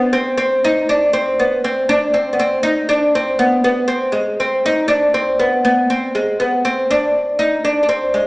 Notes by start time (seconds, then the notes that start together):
Already playing: B3
0.13 C4
0.38 C4
0.64 D#4
0.89 D4
1.13 C4
1.39 B3
1.64 C4
1.89 D4
2.14 C4
2.33 B3
2.39 C4
2.63 D#4
2.89 D4
3.15 C4
3.39 B3
3.64 B3
3.88 C4
4.12 G#3
4.40 C4
4.66 D#4
4.88 D4
5.14 C4
5.39 B3
5.65 B3
5.90 C4
6.15 G#3
6.40 B3
6.65 C4
6.91 D4
7.39 D#4
7.65 D4
7.83 D4
7.89 C4
8.14 G#3